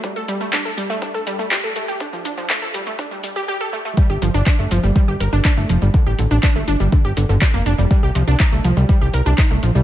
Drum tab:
HH |--x---x---x---x-|--x---x---x-----|--x---x---x---x-|--x---x---x---x-|
SH |xxxxxxxxxxxxxxxx|xxxxxxxxxxxx----|x-xxx-xxx-xxx-xx|x-xxx-xxx-xxx-xx|
CP |----x-------x---|----x-----------|----x-------x---|----x-------x---|
BD |o---o---o---o---|o---o---o-------|o---o---o---o---|o---o---o---o---|

HH |--x---x---x---x-|
SH |x-xxx-xxx-xxx-xx|
CP |----x-------x---|
BD |o---o---o---o---|